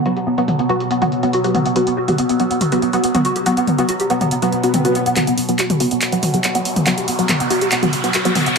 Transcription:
Already playing: B2 F#3
0.06 F#3 B3 F#4, closed hi-hat
0.16 G4, closed hi-hat
0.27 B3
0.38 F#3 B3 F#4, closed hi-hat
0.48 B3, closed hi-hat, mid tom
0.59 B3, closed hi-hat
0.69 F#3 B3 F#4, closed hi-hat
0.80 G4, closed hi-hat
0.91 B3, closed hi-hat
1.02 F#3 B3 F#4, closed hi-hat, mid tom
1.12 B3, closed hi-hat
1.23 F#3 B3 F#4, closed hi-hat
1.33 F#4, closed hi-hat
1.44 F#3 B3 F#4 G4, closed hi-hat
1.55 B3, closed hi-hat, mid tom
1.66 B3, closed hi-hat
1.76 F#3 B3 F#4, closed hi-hat
1.87 B3, closed hi-hat
1.97 F#4
2.08 F#3 B3 F#4 G4, closed hi-hat, mid tom
2.18 B3, closed hi-hat
2.29 B3, closed hi-hat
2.40 F#3 B3 F#4, closed hi-hat
2.51 B3, closed hi-hat
2.61 F#4, closed hi-hat, mid tom
2.72 F#3 B3 F#4 G4, closed hi-hat
2.82 B3, closed hi-hat
2.93 F#3 B3 F#4, closed hi-hat
3.03 B3, closed hi-hat
3.15 F#3 B3 F#4, closed hi-hat, mid tom
3.25 F#4, closed hi-hat
3.36 G4, closed hi-hat
3.46 F#3 B3 F#4, closed hi-hat
3.57 B3, closed hi-hat
3.67 B3, closed hi-hat, mid tom
3.78 F#3 B3 F#4, closed hi-hat
3.89 F#4, closed hi-hat
4.00 G4, closed hi-hat
4.10 F#3 B3 F#4, closed hi-hat
4.21 B3, closed hi-hat, mid tom
4.31 B3, closed hi-hat, swell
4.42 F#3 B3 F#4, closed hi-hat
4.52 B3, closed hi-hat
4.63 F#3 B3 F#4, closed hi-hat
4.74 C4, closed hi-hat, mid tom
4.85 F#3 B3 F#4, closed hi-hat
4.95 B3, closed hi-hat
5.06 B3, closed hi-hat
5.16 B2 F#3 B3 F#4, clap, closed hi-hat, mid tom, riser
5.27 B3, closed hi-hat
5.38 B3, open hi-hat
5.49 F#3 B3 F#4, closed hi-hat
5.59 F#4, clap, closed hi-hat
5.70 G4, closed hi-hat, mid tom
5.80 F#3 B3 F#4, open hi-hat
5.91 B3, closed hi-hat
6.01 B3, clap, closed hi-hat
6.12 F#3 B3 F#4, closed hi-hat
6.23 F#4, open hi-hat, mid tom
6.34 F#3 B3 F#4 G4, closed hi-hat
6.44 B3, clap, closed hi-hat
6.55 F#3 B3 F#4, closed hi-hat
6.65 B3, open hi-hat
6.76 B3, closed hi-hat, mid tom
6.86 F#3 B3 F#4, clap, closed hi-hat
6.98 G4, closed hi-hat
7.08 B3, open hi-hat
7.19 F#3 B3 F#4, closed hi-hat
7.29 B3, clap, closed hi-hat, mid tom
7.40 B3, closed hi-hat
7.50 F#3 B3 F#4, open hi-hat
7.61 G4, closed hi-hat
7.72 B3, clap, closed hi-hat
7.83 F#3 B3 F#4, closed hi-hat, mid tom
7.93 B3, open hi-hat
8.04 F#3 B3 F#4, closed hi-hat
8.14 F#4, clap, closed hi-hat
8.25 F#3 B3 F#4 G4, closed hi-hat
8.35 B3, open hi-hat, mid tom
8.46 B3, closed hi-hat

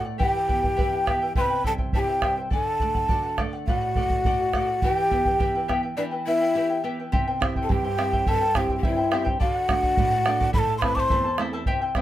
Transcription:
Already playing: A2 A3
0.05 D5 F#5
0.18 E3 E4 G4 B4 E5 G5, bombo low
0.22 G5
0.33 E4 B4 G5
0.48 B3 E4 B4 E5 G5, bombo low
0.62 E4 B4 G5, bombo low
0.76 E4 G4 B4 E5 G5, bombo low
0.92 E4 B4 G5
1.06 B3 E4 G4 B4 E5 G5, bombo rim, bombo low
1.22 E4 B4 G5
1.35 C3 E4 G4 B4 C5 E5 G5 C6, bombo low
1.41 B5
1.50 E4 C5 G5
1.63 G3 E4 A4 C5 E5 G5 A5, bombo low
1.78 E4 C5 G5, bombo low
1.93 E4 G4 C5 E5 G5 A5, bombo low
1.99 G5
2.08 E4 C5 G5
2.22 G3 E4 G4 C5 E5 G5, bombo rim, bombo low
2.37 E4 C5 G5
2.50 D3 A4 D5 F#5 G#5, bombo low
2.64 D5 F#5 A5
2.80 A3 A4 D5 F#5, bombo low
2.95 D5 F#5, bombo low
3.08 F#4 A4 D5 F#5, bombo low
3.23 D5 F#5
3.38 A3 A4 D5 F#5, bombo rim, bombo low
3.53 D5 F#5
3.67 A2 F#4 A4 D5 F#5, bombo low
3.81 D5 F#5
3.96 A3 A4 D5 F#5, bombo low
4.10 D5 F#5, bombo low
4.25 F#4 A4 D5 F#5, bombo low
4.40 D5 F#5
4.53 A3 A4 D5 F#5, bombo rim, bombo low
4.68 D5 F#5
4.82 E3 E4 G4 B4 E5 G5, bombo low
4.97 E4 B4 G5
5.11 B3 E4 B4 E5 G5, bombo low
5.25 E4 B4 G5, bombo low
5.39 E4 G4 B4 E5 G5, bombo low
5.55 E4 B4 G5
5.68 B3 E4 G4 B4 E5 G5, bombo rim, bombo low
5.83 E4 B4 G5
5.97 E3 D4 E4 G4 B4 D5 E5 G5
6.11 E4 B4 G5
6.26 B3 E4 B4 E5 G5
6.41 E4 B4 G5
6.55 E4 G4 B4 E5 G5
6.69 E4 B4 G5
6.84 B3 E4 G4 B4 E5 G5
6.99 E4 B4 G5
7.12 C3 E4 G4 C5 E5 G5, bombo low
7.28 E4 C5 G5
7.40 C4 E4 G4 C5 E5 G5, bombo rim, bombo low
7.56 E4 C5 G5, bombo low
7.63 A4 A5
7.69 G2 E4 G4 C5 E5 G5, bombo low
7.84 E4 C5 G5
7.97 C4 E4 G4 C5 E5 G5, bombo rim
8.13 E4 G4 C5 E5 G5, bombo low
8.26 G2 E4 G4 A4 C5 E5 G5 A5, bombo low
8.41 E4 C5 G5
8.55 C4 E4 G4 C5 E5 G5, bombo rim, bombo low
8.69 E4 C5 G5, bombo low
8.76 G4 G5
8.83 G2 E4 C5 E5 G5, bombo low
8.96 E4 C5 G5
9.11 C4 E4 G4 C5 E5 G5, bombo rim
9.24 E4 G4 C5 E5 G5, bombo low
9.39 D3 F#4 A4 D5 F5 F#5, bombo low
9.54 D5 F#5
9.68 A3 D4 F#4 A4 D5 F#5, bombo rim, bombo low
9.83 D5 F#5, bombo low
9.97 A2 A4 D5 F#5, bombo low
10.11 D5 F#5
10.25 A3 D4 F#4 A4 D5 F#5, bombo rim
10.40 A4 D5 F#5, bombo low
10.53 A2 E4 A4 C5 E5 A5 B5, bombo low
10.59 A5
10.68 E4 A4 A5
10.78 A3 C5 E5 B5 C6
10.82 C4 E4 A4 B4 A5, bombo rim, bombo low
10.95 E4 A4 C5 A5 D6, bombo low
11.00 C6
11.09 E2 E4 A4 E5 A5, bombo low
11.24 E4 A4 A5
11.38 A3 C4 E4 A4 C5 E5 A5, bombo rim
11.53 E4 A4 C5 E5 A5
11.66 C3 E4 G4 C5 E5 G5, bombo low
11.82 E4 C5 G5
11.95 G3 C4 E4 C5 E5 G5, bombo rim, bombo low

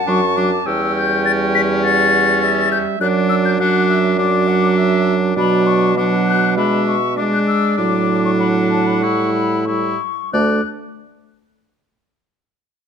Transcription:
Already playing: A5
0.07 F#2 F#3 D4 C#6
0.37 F#3 D4 D6
0.66 E2 G3 C#4 G5 E6
0.96 G6
1.25 A6
1.55 B6
1.84 F#5 A6
2.43 E5
2.72 G6
3.00 F#2 F#3 D4 D5 F#6
3.29 E6
3.45 G6
3.60 F#3 D4 F#5 F#6
3.90 E5
4.19 F#3 D4 D5 D6
4.48 F#5
4.77 E5
5.36 B2 F#3 D4 D5 B5
5.67 C#6
5.97 F#3 D4 F#5 D6
6.27 F#6
6.57 G#3 D4 E5 B5
6.87 C#6
7.17 G#3 D4 D5 D6
7.33 F#6
7.47 E6
7.78 A2 F#3 D4 D6
8.25 C#6
8.40 F#5 B5
8.70 A5
8.87 B5
9.01 G3 E4 C#6
9.34 B5
9.65 G3 E4 E5 C#6
10.33 D2 A3 D4 D5 F#6

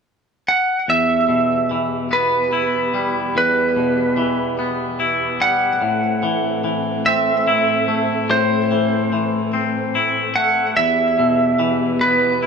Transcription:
0.48 F#5
0.87 E2 E3 B3 G4 E5
1.29 B2
1.71 E3
2.11 B3 B4
2.53 E4
2.94 G3
3.35 E2 B4
3.77 B2
4.17 E3
4.59 B3
5.00 E4
5.41 G3 F#5
5.82 A2 C4 A4
6.23 E3
6.64 E3
7.06 C4 E5
7.47 E4
7.88 A3
8.29 A2 C5
8.71 E3
9.13 E3
9.53 C4
9.95 E4
10.36 A3 F#5
10.76 E2 E3 B3 G4 E5
11.19 B2
11.59 E3
12.01 B3 B4
12.43 E4

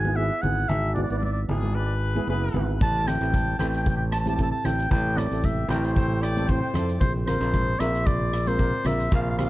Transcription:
Already playing: G#1 G#5
0.05 B3 E4 G#4, high conga
0.16 B3 E4 G#4 E5
0.42 G#1 B3 E4 G#4 F#5, low conga
0.69 G#1 E5, low conga
0.94 B3 E4 F#4 D5, low conga
1.03 D5
1.10 G#1 B3 E4 B4 D5
1.18 D5
1.23 D5, high conga
1.32 D5
1.48 G#1 B3 E4 G#4, low conga
1.63 high conga
1.75 B4
2.15 B3 E4 G#4, high conga
2.27 F#1 B3 E4 G#4 B4
2.54 G#1 B3 E4 B4, high conga, low conga
2.81 A1 A5, kick, closed hi-hat, low conga
3.06 C4 E4 A4 G5, cross-stick, closed hi-hat, low conga
3.21 A1 C4 E4 A4, closed hi-hat
3.33 kick, closed hi-hat, high conga
3.59 A1 C4 E4 A4 G5, cross-stick, closed hi-hat, low conga
3.68 G5
3.74 G5, closed hi-hat
3.82 G5, kick, closed hi-hat
3.90 G5
3.97 G5
4.12 A5, cross-stick, closed hi-hat
4.20 A5
4.25 C4 E4 G4 A5, closed hi-hat, high conga
4.35 C4 E4 A5, kick, closed hi-hat
4.40 A4 A5
4.52 A5
4.64 A1 C4 E4 A4 G5, cross-stick, closed hi-hat, low conga
4.79 closed hi-hat
4.91 A1 G5, kick, closed hi-hat, low conga
5.16 C4 E4 A4 D5, cross-stick, closed hi-hat, low conga
5.31 A1 C4 E4 A4, closed hi-hat
5.44 E5, kick, closed hi-hat, high conga
5.68 A1 C4 E4 A4 A#4 G5, cross-stick, closed hi-hat, low conga
5.79 G5
5.85 C5 G5, closed hi-hat
5.93 C5 G5, kick, closed hi-hat
6.01 G5
6.09 G5
6.15 G5
6.22 D5 G5, cross-stick, closed hi-hat
6.31 G5
6.37 C4 E4 A4 G5, closed hi-hat, high conga
6.46 C5 G5, kick, closed hi-hat
6.51 C4 E4 C5 G5
6.61 G5
6.74 F2 C4 E4 A4, cross-stick, closed hi-hat, low conga
6.89 closed hi-hat
7.01 A#1 C5, kick, closed hi-hat, low conga
7.26 C4 F4 A#4 C5, cross-stick, closed hi-hat, low conga
7.41 A#1 C4 F4 A#4, closed hi-hat
7.54 kick, closed hi-hat, high conga
7.79 A#1 C4 F4 A#4 E5, cross-stick, closed hi-hat
7.95 closed hi-hat
8.06 D5, kick, closed hi-hat
8.33 cross-stick, closed hi-hat
8.46 C4 F4 A#4 C5, closed hi-hat, high conga
8.58 C4 F4 A#4, kick, closed hi-hat
8.85 A#1 C4 F4 A#4 E5, cross-stick, closed hi-hat, low conga
9.00 closed hi-hat
9.11 A#1 F5, kick, closed hi-hat, low conga
9.22 F5
9.30 F5
9.37 C4 F4 G4 F5, cross-stick, closed hi-hat, low conga
9.45 F5

